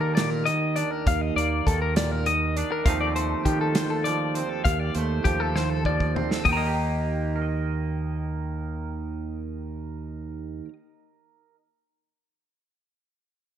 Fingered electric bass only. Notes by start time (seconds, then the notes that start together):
Already playing: D#3
1.06 D#2
1.36 D#2
1.67 D#2
2.86 D#2
3.46 D#3
4.65 D#2
4.96 D#2
5.25 D#2
6.45 D#2